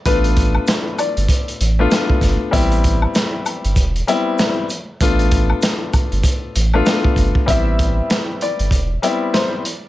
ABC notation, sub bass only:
X:1
M:4/4
L:1/16
Q:"Swing 16ths" 1/4=97
K:Am
V:1 name="Sub bass" clef=bass
A,,,4 z3 G,,, z2 A,,,2 z2 G,,, z | A,,,4 z3 G,,, E,,,2 z6 | A,,,4 z3 G,,, z2 A,,,2 z2 G,,, z | A,,,4 z3 G,,, E,,,2 z6 |]